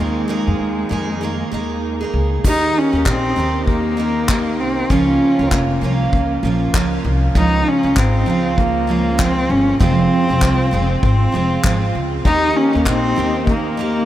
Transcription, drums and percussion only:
2.45 kick loud
2.45 crash medium
3.06 kick medium
3.06 clap medium
3.67 kick medium
4.29 kick loud
4.29 clap loud
4.90 kick loud
5.52 kick medium
5.52 clap medium
6.13 kick loud
6.74 kick loud
6.74 clap loud
7.35 kick loud
7.97 kick loud
7.97 clap medium
8.58 kick loud
9.19 kick medium
9.19 clap loud
9.81 kick loud
10.42 kick medium
10.42 clap medium
11.03 kick loud
11.64 kick loud
11.64 clap loud
12.25 kick loud
12.86 kick medium
12.86 clap medium
13.47 kick loud

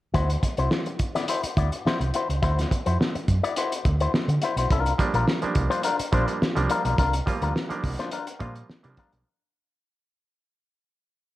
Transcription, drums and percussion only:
0.14 kick medium
0.14 closed hi-hat medium
0.30 closed hi-hat soft
0.43 kick medium
0.43 closed hi-hat medium
0.57 closed hi-hat soft
0.71 snare loud
0.86 closed hi-hat soft
0.99 kick medium
0.99 closed hi-hat medium
1.16 snare soft
1.16 closed hi-hat soft
1.28 closed hi-hat medium
1.43 closed hi-hat medium
1.57 kick medium
1.57 closed hi-hat medium
1.72 closed hi-hat soft
1.87 snare loud
2.01 closed hi-hat soft
2.14 closed hi-hat medium
2.30 closed hi-hat soft
2.43 kick medium
2.43 closed hi-hat medium
2.59 snare soft
2.59 closed hi-hat soft
2.71 kick medium
2.71 closed hi-hat medium
2.86 closed hi-hat soft
3.01 snare loud
3.15 closed hi-hat soft
3.28 kick medium
3.28 closed hi-hat medium
3.44 closed hi-hat soft
3.56 closed hi-hat medium
3.72 closed hi-hat medium
3.85 kick medium
3.85 closed hi-hat medium
4.00 closed hi-hat soft
4.14 snare loud
4.29 closed hi-hat soft
4.42 closed hi-hat medium
4.57 closed hi-hat medium
4.71 kick medium
4.71 closed hi-hat medium
4.86 closed hi-hat medium
4.99 kick medium
4.99 closed hi-hat medium
5.14 closed hi-hat soft
5.28 snare loud
5.42 closed hi-hat soft
5.55 kick medium
5.55 closed hi-hat medium
5.71 closed hi-hat soft
5.83 closed hi-hat medium
5.99 closed hi-hat medium
6.13 kick medium
6.13 closed hi-hat medium
6.28 closed hi-hat soft
6.42 snare loud
6.57 closed hi-hat soft
6.70 closed hi-hat medium
6.85 closed hi-hat soft
6.98 kick medium
6.98 closed hi-hat medium
7.13 closed hi-hat medium
7.27 kick medium
7.27 closed hi-hat medium
7.42 closed hi-hat soft
7.56 snare loud
7.70 closed hi-hat soft
7.84 kick medium
7.84 open hi-hat medium
7.99 snare soft
7.99 closed hi-hat soft
8.11 closed hi-hat medium
8.27 closed hi-hat medium
8.40 kick medium
8.40 closed hi-hat medium
8.55 closed hi-hat soft
8.70 snare loud
8.84 closed hi-hat soft
8.97 kick medium
8.97 closed hi-hat medium
9.12 closed hi-hat soft

